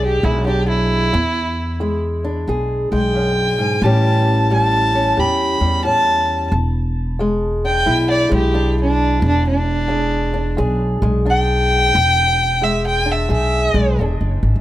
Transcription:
0.00 0.19 B1 medium
0.00 0.41 E2 medium
0.00 0.23 G#3 medium
0.00 0.46 D4 medium
0.00 1.11 G#4 medium
0.05 0.26 G4 medium
0.23 1.09 B1 medium
0.23 1.11 G#3 medium
0.23 0.45 E4 medium
0.46 1.09 E2 medium
0.46 1.11 D4 medium
0.46 0.68 G4 medium
0.68 1.99 E4 loud
1.13 1.75 E2 medium
1.13 2.44 E2 loud
1.80 2.43 E2 medium
1.80 2.91 G#3 medium
2.24 3.79 D4 medium
2.48 2.88 B1 medium
2.48 3.10 E2 medium
2.48 3.80 G#4 medium
2.92 3.78 B1 medium
2.92 3.80 G#3 medium
2.92 3.84 G5 medium
3.15 3.58 F#2 medium
3.58 3.82 G#2 medium
3.82 5.13 A1 loud
3.82 4.45 A2 medium
3.82 7.33 E3 medium
3.82 4.50 G3 medium
3.82 4.94 C#4 medium
3.82 5.18 G4 medium
3.82 4.48 A5 medium
4.51 5.13 A2 medium
4.51 5.60 G3 medium
4.51 5.21 A5 loud
4.95 5.84 C#4 medium
5.17 5.57 E2 medium
5.17 5.80 A2 medium
5.17 6.50 G4 medium
5.17 5.84 B5 medium
5.61 6.48 E2 medium
5.61 6.52 G3 medium
5.84 6.47 A2 medium
5.84 6.50 C#4 medium
5.84 6.50 A5 loud
6.51 7.83 E1 loud
6.51 7.15 E2 medium
7.19 7.83 E2 medium
7.19 8.29 G#3 medium
7.65 8.54 D4 medium
7.65 8.09 G5 medium
7.86 8.27 B1 medium
7.86 8.50 E2 medium
7.86 10.58 E4 medium
8.10 8.32 D5 medium
8.29 9.19 B1 loud
8.29 9.89 G#3 medium
8.34 8.77 G4 medium
8.54 9.18 E2 medium
8.54 9.23 D4 medium
8.81 9.23 D4 loud
9.20 10.54 E1 loud
9.20 9.85 E2 medium
9.28 9.47 D4 loud
9.47 10.78 D4 loud
9.88 10.53 E2 medium
9.88 11.02 G#3 medium
10.34 11.25 D4 medium
10.57 10.99 B1 medium
10.57 11.21 E2 medium
10.57 11.91 G#4 medium
11.02 11.90 B1 loud
11.02 11.92 G#3 medium
11.25 11.89 E2 medium
11.25 11.92 D4 medium
11.30 12.65 G5 loud
11.94 13.27 E1 loud
11.94 12.57 E2 medium
12.61 13.25 E2 medium
12.61 13.73 G#3 medium
12.61 12.85 E5 medium
12.87 13.13 G5 medium
13.06 13.98 D4 medium
13.11 13.32 E5 medium
13.29 13.71 B1 medium
13.29 13.93 E2 medium
13.29 14.61 G#4 medium
13.33 13.98 E5 medium
13.74 13.96 B1 medium
13.74 14.61 G#3 medium
13.99 14.19 E1 medium
13.99 14.61 E2 medium
13.99 14.61 D4 medium
14.21 14.41 F#1 medium
14.43 14.53 G#1 medium
14.56 14.61 B1 medium

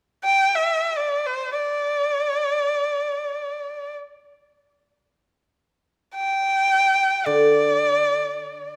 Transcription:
0.24 0.56 G5 medium
0.55 0.99 E5 medium
0.97 1.27 D5 medium
1.26 1.51 C5 medium
1.52 3.95 D5 medium
6.15 7.27 G5 medium
7.26 8.76 D3 soft
7.26 8.72 D5 medium

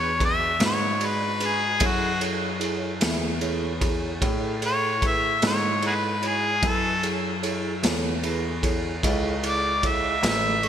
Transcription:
0.00 0.57 E2 medium
0.00 0.10 F#4 soft
0.00 0.10 G#4 soft
0.00 0.10 B4 medium
0.00 0.21 C#5 medium
0.20 0.50 D4 medium
0.20 0.50 F#4 soft
0.20 0.50 G#4 soft
0.20 0.51 B4 medium
0.20 kick medium
0.20 ride medium
0.25 0.62 E5 medium
0.60 1.77 G#2 medium
0.60 0.91 D4 medium
0.60 0.91 F#4 soft
0.60 0.91 G#4 soft
0.60 0.91 B4 medium
0.60 snare loud
0.60 ride medium
0.66 1.07 C#5 medium
1.00 1.31 D4 soft
1.00 1.31 F#4 soft
1.00 1.31 G#4 soft
1.00 1.31 D5 medium
1.00 ride medium
1.06 1.48 B4 medium
1.40 1.71 D4 medium
1.40 1.71 F#4 soft
1.40 1.71 G#4 soft
1.40 1.71 B4 medium
1.40 ride medium
1.46 1.87 G#4 medium
1.80 2.98 F#2 medium
1.80 2.11 E4 medium
1.80 2.11 G#4 medium
1.80 2.11 A4 medium
1.80 2.11 C#5 medium
1.80 kick medium
1.80 ride medium
1.86 2.23 F#4 loud
2.20 2.51 E4 medium
2.20 2.51 G#4 soft
2.20 2.51 A4 soft
2.20 2.51 C#5 medium
2.20 ride medium
2.60 2.91 E4 medium
2.60 2.91 G#4 medium
2.60 2.91 A4 medium
2.60 2.91 C#5 medium
2.60 ride medium
3.00 4.19 E2 medium
3.00 3.31 E4 medium
3.00 3.32 G#4 medium
3.00 3.31 A4 medium
3.00 3.32 E5 medium
3.00 snare loud
3.00 ride medium
3.40 3.71 E4 medium
3.40 3.72 G#4 medium
3.40 3.72 A4 medium
3.40 3.72 C#5 medium
3.40 ride medium
3.80 4.11 E4 medium
3.80 4.11 G#4 medium
3.80 4.12 A4 medium
3.80 4.12 C#5 medium
3.80 kick medium
3.80 ride medium
4.21 5.39 A2 medium
4.21 4.52 E4 medium
4.21 4.52 G#4 medium
4.21 4.52 A4 medium
4.21 4.52 C#5 medium
4.21 kick medium
4.21 ride medium
4.62 4.92 E4 medium
4.62 4.92 G#4 soft
4.62 4.92 A4 soft
4.62 4.92 C#5 medium
4.62 ride medium
4.66 5.03 C#5 loud
5.02 5.32 E4 medium
5.02 5.32 G#4 soft
5.02 5.32 A4 soft
5.02 5.33 B4 medium
5.02 kick medium
5.02 ride medium
5.07 5.44 E5 medium
5.42 6.59 G#2 medium
5.42 5.72 E4 medium
5.42 5.72 G#4 soft
5.42 5.73 A4 medium
5.42 5.72 C#5 medium
5.42 snare loud
5.42 ride medium
5.47 5.84 C#5 medium
5.81 6.12 E4 medium
5.81 6.12 G#4 soft
5.81 6.12 A4 soft
5.81 6.13 C#5 medium
5.81 ride medium
5.87 5.93 F#4 medium
5.87 5.93 G#4 medium
5.87 6.29 B4 medium
6.22 6.53 E4 medium
6.22 6.53 F#4 soft
6.22 6.53 G#4 soft
6.22 6.53 C#5 medium
6.22 ride medium
6.27 6.69 G#4 loud
6.62 7.80 F#2 medium
6.62 6.92 E4 medium
6.62 6.93 A4 medium
6.62 6.93 B4 medium
6.62 6.93 G#5 medium
6.62 kick loud
6.62 ride medium
6.67 7.04 A4 loud
7.03 7.33 E4 medium
7.03 7.33 G#4 medium
7.03 7.33 A4 soft
7.03 7.33 C#5 medium
7.03 ride medium
7.42 7.73 E4 medium
7.42 7.73 G#4 medium
7.42 7.73 A4 medium
7.42 7.73 C#5 medium
7.42 ride medium
7.82 8.99 E2 medium
7.82 8.13 E4 medium
7.82 8.13 G#4 medium
7.82 8.13 A4 medium
7.82 8.13 C#5 medium
7.82 snare loud
7.82 ride medium
8.23 8.53 E4 medium
8.23 8.53 G#4 medium
8.23 8.53 A4 medium
8.23 8.54 B4 medium
8.23 ride medium
8.62 8.93 E4 medium
8.62 8.93 G#4 medium
8.62 8.93 A4 medium
8.62 8.93 C#5 medium
8.62 kick medium
8.62 ride medium
9.03 10.20 C#2 medium
9.03 9.33 E4 medium
9.03 9.33 G#4 medium
9.03 9.33 A4 medium
9.03 9.33 C#5 medium
9.03 kick medium
9.03 ride medium
9.43 9.73 E4 medium
9.43 9.73 G#4 medium
9.43 9.73 A4 medium
9.43 9.73 C#6 medium
9.43 ride medium
9.48 9.89 D5 medium
9.83 10.13 E4 medium
9.83 10.13 G#4 medium
9.83 10.13 A4 soft
9.83 10.13 C#5 medium
9.83 kick medium
9.83 ride medium
9.87 10.24 E5 medium
10.22 10.69 A1 medium
10.22 10.53 E4 medium
10.22 10.53 G#4 medium
10.22 10.53 A4 medium
10.22 10.53 C#5 medium
10.22 snare loud
10.22 ride medium
10.28 10.69 E5 loud
10.62 10.69 E4 medium
10.62 10.69 G#4 soft
10.62 10.69 A4 soft
10.62 10.69 C#6 medium
10.62 ride medium

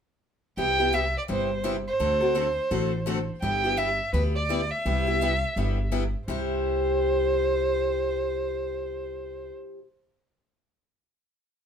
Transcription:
0.57 1.14 C2 medium
0.57 0.78 C3 medium
0.57 0.78 G3 medium
0.57 0.78 B3 medium
0.57 0.78 E4 medium
0.57 0.77 G4 medium
0.57 0.96 G5 loud
0.79 0.92 B3 soft
0.79 0.92 E4 medium
0.79 0.92 G4 soft
0.93 1.04 C3 medium
0.93 1.04 G3 medium
0.93 1.04 B3 medium
0.93 1.04 E4 medium
0.93 1.04 G4 medium
0.93 1.18 E5 medium
1.18 1.23 D5 medium
1.28 1.86 G1 medium
1.28 1.49 C3 medium
1.28 1.49 G3 medium
1.28 1.49 B3 medium
1.28 1.49 E4 medium
1.28 1.50 G4 medium
1.28 1.63 C5 medium
1.64 1.75 C3 medium
1.64 1.75 G3 medium
1.64 1.75 B3 medium
1.64 1.75 E4 medium
1.64 1.75 G4 medium
1.88 3.25 C5 medium
1.99 2.57 D2 medium
1.99 2.20 D3 medium
1.99 2.20 A3 medium
1.99 2.21 C4 medium
1.99 2.20 F#4 medium
1.99 2.19 A4 medium
2.21 2.34 C4 soft
2.21 2.34 F#4 soft
2.21 2.34 A4 medium
2.35 2.46 D3 medium
2.35 2.46 A3 medium
2.35 2.46 C4 medium
2.35 2.46 F#4 medium
2.35 2.46 A4 medium
2.71 3.28 A1 medium
2.71 2.92 D3 medium
2.71 2.92 A3 medium
2.71 2.92 C4 medium
2.71 2.92 F#4 medium
2.71 2.92 A4 medium
3.06 3.17 D3 medium
3.06 3.18 A3 medium
3.06 3.18 C4 medium
3.06 3.18 F#4 medium
3.06 3.18 A4 medium
3.42 3.99 G1 medium
3.42 3.63 G3 medium
3.42 3.63 B3 medium
3.42 3.63 E4 medium
3.42 3.63 G4 medium
3.42 3.79 G5 medium
3.64 3.76 B3 soft
3.64 3.77 E4 soft
3.64 3.77 G4 medium
3.77 3.88 G3 medium
3.77 3.89 B3 medium
3.77 3.89 E4 medium
3.77 3.89 G4 medium
3.77 4.13 E5 medium
4.13 4.70 D2 medium
4.13 4.34 G3 medium
4.13 4.35 B3 medium
4.13 4.35 E4 medium
4.13 4.35 G4 medium
4.13 4.23 B4 medium
4.35 4.72 D5 medium
4.49 4.60 G3 medium
4.49 4.61 B3 medium
4.49 4.61 E4 medium
4.49 4.61 G4 medium
4.71 5.92 E5 medium
4.85 5.42 C2 medium
4.85 5.06 C3 medium
4.85 5.06 G3 medium
4.85 5.06 B3 medium
4.85 5.06 E4 medium
4.85 5.06 G4 medium
5.07 5.21 B3 soft
5.07 5.20 E4 soft
5.07 5.20 G4 medium
5.21 5.32 C3 medium
5.21 5.32 G3 medium
5.21 5.32 B3 medium
5.21 5.32 E4 medium
5.21 5.32 G4 medium
5.56 6.13 G1 medium
5.56 5.77 C3 medium
5.56 5.77 G3 medium
5.56 5.78 B3 medium
5.56 5.78 E4 medium
5.56 5.78 G4 medium
5.92 6.03 C3 medium
5.92 6.03 G3 medium
5.92 6.03 B3 medium
5.92 6.03 E4 medium
5.92 6.03 G4 medium
6.28 9.50 C2 medium
6.28 9.78 C3 medium
6.28 9.78 G3 medium
6.28 9.80 E4 medium
6.28 9.80 G4 medium
6.28 9.51 C5 medium

